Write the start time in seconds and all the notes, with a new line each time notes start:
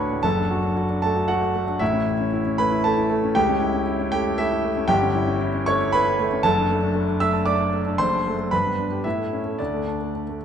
Already playing: D2 A2 D4 F#4 B4 C#5 F#5 B5 C#6
0.11 A2
0.23 F#1 F#2 A4 A5
0.37 D4
0.51 F#4
0.64 D4
0.77 F#4
0.90 D4
1.02 A3 A4 A5
1.16 F#4
1.28 A3 F#4 F#5
1.42 F#4
1.56 A3
1.67 D4
1.79 A1 A2 E4 E5
1.93 C#4
2.07 E4
2.20 C#4
2.33 E4
2.46 C#4
2.58 A3 B4 B5
2.72 E4
2.84 A3 A4 A5
2.97 E4
3.10 A3
3.24 C#4
3.35 C#2 G4 G5
3.48 C#4
3.60 E4
3.74 C#4
3.87 E4
3.99 C#4
4.12 A3 G4 G5
4.27 E4
4.38 A3 E4 E5
4.52 E4
4.65 A3
4.77 C#4
4.88 G1 G2 G4 G5
5.01 C#4
5.15 E4
5.27 C#4
5.41 E4
5.54 C#4
5.66 A3 C#5 C#6
5.80 E4
5.92 A3 B4 B5
6.07 E4
6.19 A3
6.32 C#4
6.43 F#1 F#2 A4 A5
6.57 D4
6.70 A3
6.83 D4
6.95 A3
7.08 D4
7.20 A3 E5 E6
7.33 D4
7.46 A3 D5 D6
7.59 D4
7.73 A3
7.86 D4
7.98 F#1 F#2 C5 C6
8.13 D4
8.27 A3
8.38 A4
8.51 G2 B4 B5
8.66 B3
8.79 D4
8.92 G4
9.04 A2 E4 E5
9.19 A3
9.33 C#4
9.45 A3
9.59 D2 D4 D5
9.74 A3
9.87 D4
10.02 A3
10.15 D4
10.29 A3